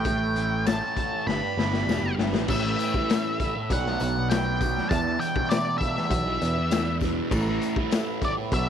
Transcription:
Already playing: picked electric bass A1, harmonium A3 C#4 E4 A4 C#5, lead electric guitar G5
0.05 distorted electric guitar A2, kick, closed hi-hat
0.36 distorted electric guitar E3, closed hi-hat
0.65 distorted electric guitar C#4, lead electric guitar A5, snare, closed hi-hat, tambourine
0.97 distorted electric guitar A3, kick, closed hi-hat
1.26 picked electric bass G1, distorted electric guitar G2, harmonium B3 D4 G4 B4 D5, lead electric guitar B5, snare
1.57 picked electric bass G1, distorted electric guitar B3, snare
1.74 snare
1.87 picked electric bass E1, distorted electric guitar G3, snare, tambourine
2.02 picked electric bass F#1
2.18 picked electric bass G1, distorted electric guitar B3, snare
2.33 picked electric bass A1, snare
2.47 picked electric bass A1, distorted electric guitar A2 E3 A3, harmonium B3 E4 A4 B4 E5, lead electric guitar E5, kick, crash, tambourine
2.64 distorted electric guitar E3 A3
2.79 closed hi-hat, tambourine
2.94 distorted electric guitar E3 A3, kick
3.10 distorted electric guitar A2 E3 A3, snare, closed hi-hat, tambourine
3.40 distorted electric guitar A2 E3 A3, kick, closed hi-hat, tambourine
3.56 muted distorted electric guitar stroke
3.70 picked electric bass B1, distorted electric guitar B2 F#3 B3, harmonium F#3 D4 D5, lead electric guitar F#5, kick, closed hi-hat, tambourine
3.86 distorted electric guitar F#3 B3, snare
4.00 picked electric bass B1, distorted electric guitar B2 F#3 B3, closed hi-hat, tambourine
4.17 muted distorted electric guitar stroke
4.30 distorted electric guitar B2 F#3 B3, lead electric guitar G5, snare, closed hi-hat, tambourine
4.61 distorted electric guitar B2 F#3 B3, kick, closed hi-hat, tambourine
4.77 snare
4.89 picked electric bass E2, distorted electric guitar E2, harmonium E4 G4, lead electric guitar A5, kick, closed hi-hat, tambourine
4.93 distorted electric guitar B2 E3
5.05 distorted electric guitar B2 E3
5.20 lead electric guitar G5, closed hi-hat, tambourine
5.36 distorted electric guitar B2 E3, kick
5.49 distorted electric guitar E2 B2 E3, lead electric guitar D5, snare, closed hi-hat, tambourine
5.78 distorted electric guitar E2 B2, lead electric guitar E5, kick, closed hi-hat
5.83 distorted electric guitar E3, tambourine
5.97 muted distorted electric guitar stroke, snare
6.10 picked electric bass B1, kick, closed hi-hat, tambourine
6.26 distorted electric guitar B2 E3
6.41 distorted electric guitar E2 B2 E3, picked electric bass E2, closed hi-hat, tambourine
6.58 muted distorted electric guitar stroke
6.71 distorted electric guitar E2 B2 E3, snare, closed hi-hat, tambourine
7.01 distorted electric guitar E2 B2 E3, kick, snare, closed hi-hat, tambourine
7.31 picked electric bass A1, distorted electric guitar A2 E3 A3, harmonium B3 A4 E5, kick, tambourine, crash
7.48 distorted electric guitar E3 A3
7.61 closed hi-hat, tambourine
7.76 distorted electric guitar E3 A3, kick
7.91 distorted electric guitar A2 E3 A3, snare, closed hi-hat, tambourine
8.22 distorted electric guitar A2 E3 A3, lead electric guitar D5, kick, closed hi-hat, tambourine
8.38 muted distorted electric guitar stroke
8.52 picked electric bass B1, distorted electric guitar B2 F#3 B3, harmonium B3 D4 F#4 D5, lead electric guitar E5, kick, closed hi-hat, tambourine

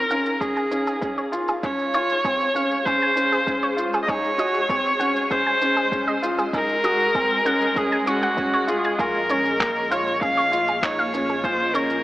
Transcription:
Already playing: ambient pad D#4 G#4 A#4 F5, viola A#4
0.11 upright piano C#4, synth arpeggio sound F5, shaker
0.26 shaker
0.41 upright piano C#4, viola G#4, synth arpeggio sound G#4, kick, shaker
0.57 synth arpeggio sound G#5, shaker
0.71 upright piano C#4, shaker
0.87 synth arpeggio sound G#4, shaker
1.01 upright piano C#4, kick, shaker
1.18 synth arpeggio sound C#5, shaker
1.32 upright piano F4, shaker
1.48 synth arpeggio sound G#4, shaker
1.63 upright piano C#4, synth arpeggio sound G#4, viola C#5, kick, shaker
1.79 shaker
1.94 upright piano F4, synth arpeggio sound C#5, shaker
2.10 shaker
2.25 upright piano C4, synth arpeggio sound G#4, kick, shaker
2.41 shaker
2.55 upright piano C#4, synth arpeggio sound F5, shaker
2.71 shaker
2.85 upright piano C#4, synth arpeggio sound G#4, viola C5, kick, shaker
3.01 synth arpeggio sound G#5, shaker
3.16 upright piano C#4, shaker
3.32 synth arpeggio sound G#4, shaker
3.47 upright piano C#4, kick, shaker
3.63 synth arpeggio sound C#5, shaker
3.77 upright piano F4, shaker
3.94 synth arpeggio sound G#4, shaker
4.03 viola D#5
4.07 ambient pad G#3, upright piano D#4, synth arpeggio sound G#4, viola C#5, kick, shaker
4.24 shaker
4.32 ambient pad D#5
4.38 upright piano F#4, synth arpeggio sound D#5, shaker
4.54 shaker
4.69 upright piano C4, synth arpeggio sound G#4, ambient pad G#5, kick, shaker
4.85 shaker
4.99 upright piano C#4, synth arpeggio sound F#5, shaker
5.16 shaker
5.31 upright piano C#4, synth arpeggio sound G#4, viola C5, kick, shaker
5.46 synth arpeggio sound G#5, shaker
5.61 upright piano C#4, shaker
5.77 synth arpeggio sound G#4, shaker
5.92 upright piano C#4, kick, shaker
6.08 synth arpeggio sound D#5, shaker
6.23 upright piano F4, shaker
6.38 synth arpeggio sound G#4, shaker
6.53 upright piano D#4, synth arpeggio sound G#4, viola A#4, kick, shaker
6.69 shaker
6.84 upright piano F#4, synth arpeggio sound D#5, shaker
7.00 shaker
7.15 upright piano C4, synth arpeggio sound G#4, kick, shaker
7.30 shaker
7.45 upright piano C#4, synth arpeggio sound F#5, shaker
7.61 shaker
7.76 upright piano C#4, synth arpeggio sound G#4, viola G#4, kick, shaker
7.92 synth arpeggio sound G#5, shaker
8.06 upright piano C#4, viola F#4, synth arpeggio sound C#6, shaker
8.23 synth arpeggio sound F#5, shaker
8.37 upright piano C#4, kick, shaker
8.53 synth arpeggio sound C#5, shaker
8.67 upright piano F4, viola G#4, shaker
8.84 synth arpeggio sound G#5, shaker
8.99 analog synth bass A#1, ambient pad A#3, upright piano F4, synth arpeggio sound G#4, viola A#4, kick, shaker
9.15 ambient pad F4, shaker
9.29 upright piano C#4, synth arpeggio sound C#5, shaker
9.45 shaker
9.60 upright piano A#3, synth arpeggio sound G#4, kick, clap, shaker
9.76 shaker
9.91 upright piano F4, viola C#5, synth arpeggio sound F5, shaker
10.07 shaker
10.21 upright piano C#4, synth arpeggio sound G#4, viola F5, kick, shaker
10.37 synth arpeggio sound C#5, shaker
10.52 upright piano F4, shaker
10.68 synth arpeggio sound G#4, shaker
10.82 upright piano D#4, viola C#5, kick, clap, shaker
10.99 synth arpeggio sound F5, shaker
11.14 upright piano C#4, shaker
11.29 synth arpeggio sound G#4, shaker
11.44 upright piano F4, synth arpeggio sound G#4, viola C5, kick, shaker
11.60 shaker
11.74 upright piano C#4, viola A#4, synth arpeggio sound C#5, shaker
11.90 shaker

